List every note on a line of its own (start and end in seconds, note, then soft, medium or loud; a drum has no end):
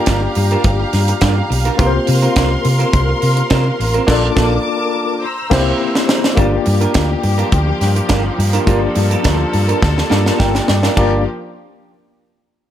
0.00 1.74 A#3 medium
0.00 1.74 D4 medium
0.00 1.75 F4 medium
0.00 1.75 G4 medium
0.00 1.76 D5 medium
0.00 4.05 F5 medium
0.00 1.75 A#5 medium
0.06 0.26 G1 loud
0.06 0.21 D4 medium
0.06 0.21 F4 loud
0.06 0.21 A#4 medium
0.06 kick loud
0.06 snare loud
0.06 closed hi-hat medium
0.23 muted clean electric guitar stroke soft
0.35 0.55 G2 loud
0.35 muted clean electric guitar stroke soft
0.35 open hi-hat medium
0.51 0.61 D4 medium
0.51 0.61 F4 medium
0.51 0.61 A#4 medium
0.51 closed hi-hat soft
0.64 0.83 G1 loud
0.64 kick loud
0.64 closed hi-hat medium
0.80 muted clean electric guitar stroke medium
0.93 1.12 G2 medium
0.93 snare soft
0.93 open hi-hat medium
1.08 muted clean electric guitar stroke medium
1.08 closed hi-hat medium
1.21 1.40 G2 loud
1.21 1.36 D4 loud
1.21 1.36 F4 medium
1.21 1.36 A#4 loud
1.21 kick loud
1.21 snare loud
1.21 closed hi-hat medium
1.37 muted clean electric guitar stroke soft
1.50 1.69 B1 medium
1.50 muted clean electric guitar stroke soft
1.50 open hi-hat medium
1.65 1.76 D4 soft
1.65 1.75 F4 medium
1.65 1.75 A#4 medium
1.65 closed hi-hat medium
1.77 1.97 C2 loud
1.77 4.03 A#3 medium
1.77 4.03 C4 medium
1.77 1.93 C4 medium
1.77 4.04 F4 medium
1.77 1.93 F4 loud
1.77 4.04 G4 medium
1.77 5.19 A#4 medium
1.77 1.93 A#4 loud
1.77 1.86 B4 medium
1.77 4.06 C6 medium
1.77 kick loud
1.77 closed hi-hat medium
1.86 4.08 C5 medium
1.94 muted clean electric guitar stroke soft
2.07 2.26 C3 loud
2.07 muted clean electric guitar stroke soft
2.07 open hi-hat medium
2.22 2.33 C4 soft
2.22 2.33 F4 medium
2.22 2.32 A#4 medium
2.22 closed hi-hat soft
2.36 2.55 C2 loud
2.36 2.50 C4 medium
2.36 2.50 F4 medium
2.36 2.50 A#4 medium
2.36 kick loud
2.36 snare loud
2.36 closed hi-hat medium
2.51 muted clean electric guitar stroke soft
2.64 2.83 C3 loud
2.64 muted clean electric guitar stroke soft
2.64 open hi-hat medium
2.79 2.90 C4 medium
2.79 2.90 F4 medium
2.79 2.89 A#4 medium
2.79 closed hi-hat soft
2.93 3.12 C2 loud
2.93 muted clean electric guitar stroke soft
2.93 kick loud
2.93 closed hi-hat medium
3.09 muted clean electric guitar stroke soft
3.22 3.41 C3 medium
3.22 open hi-hat medium
3.37 muted clean electric guitar stroke soft
3.37 closed hi-hat soft
3.50 3.69 C3 loud
3.50 3.64 C4 medium
3.50 3.65 F4 medium
3.50 3.65 A#4 loud
3.50 kick loud
3.50 snare loud
3.50 closed hi-hat medium
3.66 muted clean electric guitar stroke soft
3.80 3.98 A1 medium
3.80 muted clean electric guitar stroke soft
3.80 open hi-hat medium
3.94 4.05 C4 medium
3.94 4.04 F4 medium
3.94 4.04 A#4 medium
3.94 closed hi-hat medium
4.06 4.28 A#1 loud
4.06 4.27 A#3 loud
4.06 4.27 D4 loud
4.06 4.28 D4 loud
4.06 4.28 F4 loud
4.06 4.28 A4 loud
4.06 4.29 A4 medium
4.06 4.29 D5 medium
4.06 5.21 A5 medium
4.06 5.21 D6 medium
4.06 kick loud
4.06 snare loud
4.06 crash medium
4.36 4.57 A#1 loud
4.36 4.57 D4 medium
4.36 4.56 F4 loud
4.36 4.56 A4 loud
4.36 kick loud
4.36 snare loud
5.23 6.37 C5 medium
5.23 6.36 A#5 medium
5.23 6.37 E6 medium
5.50 5.71 C2 loud
5.50 5.71 A#3 loud
5.50 5.71 C4 loud
5.50 5.71 E4 loud
5.50 5.72 G4 loud
5.50 5.72 C5 medium
5.50 kick loud
5.50 snare loud
5.50 crash medium
5.95 snare medium
6.09 snare loud
6.24 snare loud
6.35 6.56 G1 loud
6.35 10.93 F3 medium
6.35 8.62 A#3 medium
6.35 10.93 A#3 medium
6.35 8.63 D4 medium
6.35 6.51 D4 medium
6.35 8.63 F4 medium
6.35 6.51 F4 medium
6.35 8.63 G4 medium
6.35 8.65 G4 medium
6.35 6.51 A#4 loud
6.35 8.64 D5 medium
6.35 kick loud
6.35 closed hi-hat medium
6.52 muted clean electric guitar stroke soft
6.66 6.85 G2 loud
6.66 muted clean electric guitar stroke soft
6.66 open hi-hat medium
6.81 6.91 D4 soft
6.81 6.91 F4 medium
6.81 6.91 A#4 medium
6.81 closed hi-hat soft
6.94 7.14 D2 medium
6.94 7.08 D4 medium
6.94 7.09 F4 medium
6.94 7.08 A#4 medium
6.94 kick loud
6.94 snare loud
6.94 closed hi-hat medium
7.09 muted clean electric guitar stroke medium
7.23 7.42 G2 loud
7.23 muted clean electric guitar stroke soft
7.23 open hi-hat medium
7.38 7.48 D4 medium
7.38 7.48 F4 medium
7.38 7.48 A#4 medium
7.38 closed hi-hat soft
7.51 7.71 D2 medium
7.51 muted clean electric guitar stroke soft
7.51 kick loud
7.51 closed hi-hat medium
7.67 muted clean electric guitar stroke soft
7.81 7.99 G2 medium
7.81 snare soft
7.81 open hi-hat medium
7.96 muted clean electric guitar stroke soft
7.96 closed hi-hat medium
8.09 8.28 G1 loud
8.09 8.23 D4 medium
8.09 8.23 F4 medium
8.09 8.23 A#4 medium
8.09 kick loud
8.09 snare loud
8.09 closed hi-hat medium
8.24 muted clean electric guitar stroke soft
8.38 8.57 G2 loud
8.38 muted clean electric guitar stroke soft
8.38 open hi-hat medium
8.53 8.64 D4 medium
8.53 8.63 F4 medium
8.53 8.63 A#4 medium
8.53 closed hi-hat soft
8.65 8.86 G1 loud
8.65 10.07 A#3 medium
8.65 10.08 D4 medium
8.65 8.81 D4 medium
8.65 10.08 F4 medium
8.65 8.81 F4 medium
8.65 10.08 G4 medium
8.65 10.95 A4 medium
8.65 8.81 A#4 loud
8.65 10.09 D5 medium
8.65 kick loud
8.65 closed hi-hat medium
8.82 muted clean electric guitar stroke soft
8.95 9.15 G2 loud
8.95 muted clean electric guitar stroke soft
8.95 open hi-hat medium
9.10 9.21 D4 soft
9.10 9.21 F4 medium
9.10 9.21 A#4 medium
9.10 closed hi-hat soft
9.23 9.43 D2 medium
9.23 9.38 D4 medium
9.23 9.38 F4 loud
9.23 9.38 A#4 medium
9.23 kick loud
9.23 snare loud
9.23 closed hi-hat medium
9.39 muted clean electric guitar stroke soft
9.53 9.72 G2 medium
9.53 muted clean electric guitar stroke soft
9.53 open hi-hat medium
9.68 9.79 D4 medium
9.68 9.79 F4 medium
9.68 9.78 A#4 medium
9.68 closed hi-hat soft
9.82 10.01 D2 loud
9.82 muted clean electric guitar stroke soft
9.82 kick loud
9.82 snare medium
9.98 muted clean electric guitar stroke soft
9.98 snare medium
10.10 10.29 G2 medium
10.10 10.95 A#3 medium
10.10 10.24 D4 medium
10.10 10.96 D4 medium
10.10 10.25 F4 medium
10.10 10.96 F4 soft
10.10 10.96 G4 medium
10.10 10.24 A#4 medium
10.10 10.67 D5 medium
10.10 snare medium
10.25 10.36 D4 soft
10.25 10.36 F4 medium
10.25 10.35 A#4 medium
10.25 snare medium
10.38 10.58 G1 loud
10.38 10.53 D4 medium
10.38 10.53 F4 medium
10.38 10.52 A#4 medium
10.38 10.66 G5 medium
10.38 kick loud
10.38 snare medium
10.54 muted clean electric guitar stroke soft
10.54 snare medium
10.67 10.87 G2 loud
10.67 10.95 D5 medium
10.67 muted clean electric guitar stroke soft
10.67 snare loud
10.83 10.93 D4 soft
10.83 10.93 F4 medium
10.83 10.93 A#4 medium
10.83 snare medium
10.96 11.24 G1 loud
10.96 11.24 F3 medium
10.96 11.24 A#3 medium
10.96 11.14 D4 medium
10.96 11.24 D4 medium
10.96 11.15 F4 medium
10.96 11.24 F4 medium
10.96 11.24 G4 medium
10.96 11.15 A#4 medium
10.96 11.24 D5 medium
10.96 kick loud
10.96 ride bell medium